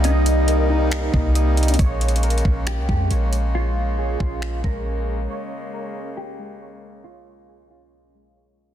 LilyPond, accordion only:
\new Staff \with { instrumentName = "Accordion" } { \clef bass \time 4/4 \key bes \dorian \tempo 4 = 137 << { <c g>1 | <des bes>1~ | <des bes>1~ | <des bes>1~ |
<des bes>1 | } \\ { <bes ees'>1 | aes1~ | aes1 | aes1~ |
aes1 | } >> }